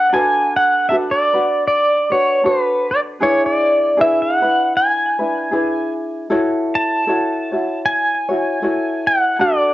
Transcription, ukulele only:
0.00 0.13 D4 medium
0.00 0.13 F#4 medium
0.00 0.13 A4 medium
0.13 0.91 D4 medium
0.13 0.90 F#4 medium
0.13 0.89 A4 medium
0.13 0.91 B4 medium
0.90 1.34 D4 medium
0.90 1.33 F#4 medium
0.90 1.33 A4 soft
0.90 1.32 B4 medium
1.33 2.12 D4 soft
1.33 2.10 F#4 soft
1.33 2.10 B4 soft
2.10 2.43 D4 soft
2.10 2.44 F#4 soft
2.10 2.43 B4 soft
2.44 3.21 D4 medium
2.44 3.21 F#4 medium
2.44 3.20 A4 soft
2.44 3.22 B4 medium
3.21 3.97 D4 medium
3.21 3.98 E4 medium
3.21 3.96 G#4 medium
3.21 3.98 B4 medium
3.97 4.42 D4 medium
3.97 4.41 E4 medium
3.97 4.41 G#4 medium
3.97 4.41 B4 medium
4.42 5.20 D4 soft
4.42 5.19 E4 soft
4.42 5.18 B4 soft
5.19 5.51 D4 soft
5.19 5.51 E4 soft
5.19 5.52 B4 soft
5.51 6.30 D4 medium
5.51 6.30 E4 medium
5.51 6.29 G#4 medium
5.51 6.29 B4 medium
6.30 7.06 E4 medium
6.30 7.08 F#4 medium
6.30 7.07 A4 medium
6.30 7.09 C#5 medium
7.07 7.51 E4 medium
7.07 7.51 F#4 medium
7.07 7.51 A4 medium
7.07 7.50 C#5 medium
7.52 8.29 E4 soft
7.52 8.29 F#4 soft
7.52 8.29 C#5 soft
8.29 8.61 E4 soft
8.29 8.62 F#4 soft
8.29 8.62 C#5 soft
8.62 9.39 E4 medium
8.62 9.39 F#4 medium
8.62 9.39 A4 medium
8.62 9.39 C#5 medium
9.39 9.74 D4 medium
9.39 9.74 F#4 medium
9.39 9.74 A4 medium

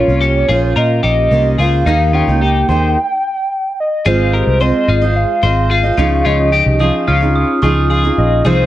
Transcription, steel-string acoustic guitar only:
0.09 0.47 A#3 soft
0.09 0.49 C#4 soft
0.09 0.50 F4 soft
0.49 1.31 A#3 medium
0.49 1.31 C#4 medium
0.49 1.32 F4 medium
0.49 1.33 C5 medium
1.31 1.57 A#3 medium
1.31 1.59 C#4 medium
1.31 1.60 F4 medium
1.31 1.60 C5 medium
1.59 1.86 A#3 medium
1.59 1.87 C#4 medium
1.59 1.87 F4 medium
1.59 1.88 C5 medium
1.87 2.28 D#3 medium
1.87 2.28 A#3 medium
1.87 2.28 D#4 medium
1.87 2.26 G4 medium
2.27 2.69 A#3 soft
2.27 2.70 D#4 soft
2.27 2.69 G4 medium
2.69 2.96 D#3 medium
2.69 2.97 A#3 medium
2.69 2.97 D#4 medium
2.69 2.98 G4 medium
4.05 5.98 G#3 medium
4.05 4.59 C4 medium
4.05 4.61 F4 medium
4.05 4.61 C5 medium
4.05 4.63 D#5 medium
4.60 5.02 C4 medium
4.60 5.02 F4 medium
4.60 5.02 C5 medium
4.60 5.00 D#5 medium
5.02 5.42 F4 soft
5.02 5.43 C5 soft
5.02 5.43 D#5 medium
5.42 5.84 C4 medium
5.42 5.85 F4 medium
5.42 5.84 C5 medium
5.42 5.82 D#5 medium
5.83 5.99 F4 soft
5.83 5.98 C5 soft
5.83 5.98 D#5 medium
5.97 6.80 C#3 medium
5.97 6.79 F3 medium
5.97 6.80 C#4 medium
5.97 6.81 D#4 medium
5.97 6.82 G#4 medium
6.79 7.21 F3 medium
6.79 7.22 C#4 medium
6.79 7.21 D#4 medium
6.79 7.19 G#4 medium
7.20 7.62 C#4 soft
7.20 7.63 D#4 medium
7.20 7.62 G#4 medium
7.62 8.03 F3 medium
7.62 8.04 C#4 medium
7.62 8.04 D#4 medium
7.62 8.02 G#4 medium
8.04 8.45 C#4 soft
8.04 8.45 D#4 medium
8.04 8.45 G#4 medium
8.45 8.66 C3 medium
8.45 8.66 F3 medium
8.45 8.66 C4 medium
8.45 8.66 D#4 medium
8.45 8.66 G#4 medium

